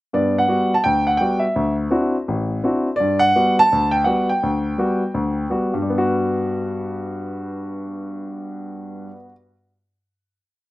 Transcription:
0.13 G2 B3 D5
0.38 F#5
0.48 G3 B3 F#4
0.74 A5
0.84 D2 G5
1.07 F#5
1.17 G3 B3 G5
1.22 F#4
1.39 E5
1.56 D2
1.91 C4 D4 E4 F#4
2.28 A1
2.64 C4 D4 E4 F#4
2.96 D5
3.00 G2
3.19 F#5
3.36 G3 B3 F#4
3.59 A5
3.72 D2
3.91 G5
4.04 G3 B3 F#4 F#5
4.29 G5
4.43 D2
4.78 G3 B3 F#4
5.14 D2
5.50 G3 B3 F#4
5.74 G2
5.82 G3
5.90 B3
5.98 F#4

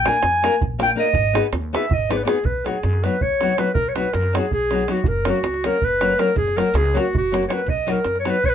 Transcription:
0.05 A#3 D4 F4 A#4 G#5, davul high
0.23 F2, davul high
0.42 A#3 D4 F4 A#4, davul high
0.61 A#1, davul low
0.78 A#3 D4 F4 A#4, davul high
0.83 G5
0.95 A#3 D4 F4 A#4 D#5
1.05 davul high
1.14 G#1, davul low
1.33 B3 D#4 G#4 B4, davul high
1.53 D#2, davul high
1.73 B3 D#4 G#4 B4 E5, davul high
1.90 G#1, davul low
1.94 D#5
2.09 B3 D#4 G#4 B4 D5, davul high
2.16 B4
2.23 B3 D#4 G#4 B4 D5
2.28 davul high
2.44 B1 B4, davul low
2.64 F#3 B3 D#4 F#4 G#4, davul high
2.83 F#2, davul high
2.93 davul high
3.04 F#3 B3 D#4 F#4 B4, davul high
3.21 B1 C#5, davul low
3.41 F#3 B3 D#4 F#4, davul high
3.57 F#3 B3 D#4 F#4 B4, davul high
3.67 davul high
3.74 B1 A#4, davul low
3.89 C#5
3.95 F#3 B3 D#4 F#4 B4, davul high
4.13 F#2 A#4, davul high
4.23 davul high
4.33 F#3 B3 D#4 F#4 G#4, davul high
4.51 B1 G#4, davul low
4.71 F#3 B3 D#4 F#4, davul high
4.88 F#3 B3 D#4 F#4, davul high
4.97 davul high
5.04 F#1 A#4, davul low
5.25 F#3 A#3 C#4 F#4, davul high
5.30 F#4
5.43 C#2, davul high
5.54 davul high
5.64 F#3 A#3 C#4 F#4 A#4, davul high
5.82 F#1 B4, davul low
6.01 F#3 A#3 C#4 F#4, davul high
6.18 F#3 A#3 C#4 F#4 A#4, davul high
6.28 davul high
6.36 F#1 G#4, davul low
6.47 davul high
6.56 F#3 A#3 C#4 F#4 A#4, davul high
6.74 C#2 G#4, davul high
6.85 davul high
6.93 F#3 A#3 C#4 F#4, davul high
6.99 F#4
7.13 F#1, davul low
7.18 F#4
7.32 F#3 A#3 C#4 F#4, davul high
7.43 davul high
7.48 F#3 A#3 C#4 F#4 C#5, davul high
7.53 B4
7.59 davul high
7.66 B1 D#5, davul low
7.86 F#3 B3 D#4 F#4, davul high
7.91 A#4
8.04 F#2, davul high
8.15 davul high
8.20 C#5
8.25 F#3 B3 D#4 F#4, davul high
8.29 B4
8.44 B1 C#5, davul low
8.49 B4

